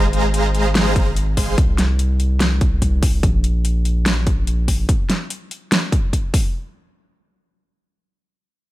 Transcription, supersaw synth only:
0.00 0.93 G#3 loud
0.00 0.93 G#4 medium
0.00 0.93 C5 medium
0.00 0.93 F5 medium
0.00 0.93 A#5 loud
0.96 1.07 G#3 medium
0.96 1.07 G#4 medium
0.96 1.07 C5 medium
0.96 1.07 F5 medium
0.96 1.07 A#5 loud
1.37 1.55 G#3 medium
1.37 1.55 G#4 medium
1.37 1.55 C5 medium
1.37 1.55 F5 medium
1.37 1.55 C6 loud

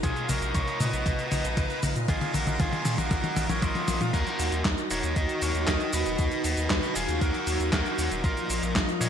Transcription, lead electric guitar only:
0.04 0.28 F4 medium
0.04 0.29 G#4 medium
0.29 0.54 F#4 medium
0.29 0.54 A#4 medium
0.55 0.79 A#4 medium
0.55 0.79 C#5 loud
0.80 1.79 B4 medium
0.80 1.79 D#5 loud
2.09 2.33 F4 medium
2.09 2.34 G#4 medium
2.35 2.59 F#4 medium
2.35 2.60 A#4 medium
2.60 2.96 F4 medium
2.60 2.98 G#4 medium
2.98 3.46 F#4 medium
2.98 3.49 A#4 loud
3.50 3.61 A#4 medium
3.50 3.63 C#5 loud
3.62 4.11 F4 medium
3.62 3.99 A#4 loud
3.62 4.01 D#5 medium
4.14 4.62 F#4 medium
4.14 4.61 A#4 loud
4.91 5.15 A#4 medium
4.91 5.16 C#5 medium
5.17 5.41 A#4 medium
5.17 5.40 D#5 loud
5.42 5.66 A#4 medium
5.42 5.68 C#5 loud
5.68 5.92 A#4 medium
5.68 5.93 D#5 loud
5.94 6.92 B4 medium
5.94 6.99 D#5 loud
6.96 7.20 F4 medium
6.96 7.21 G#4 medium
7.21 7.69 F#4 medium
7.21 7.72 A#4 medium
7.73 8.21 F#4 medium
7.73 8.20 A#4 medium
8.24 8.72 F4 medium
8.24 8.72 A#4 medium
9.01 9.09 A#4 medium
9.01 9.09 C#5 loud

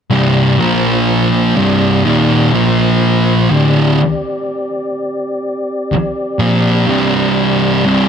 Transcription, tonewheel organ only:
0.11 0.59 C4 medium
0.11 0.59 G4 medium
0.11 0.59 D5 medium
0.59 1.56 A#3 medium
0.59 1.55 F4 medium
0.59 1.55 C5 medium
1.57 2.52 C4 medium
1.57 2.53 G4 medium
1.57 2.53 D5 medium
2.55 3.50 A#3 medium
2.55 3.50 F4 medium
2.55 3.50 C5 medium
3.51 8.09 C4 medium
3.51 8.09 G4 medium
3.51 8.09 D5 medium

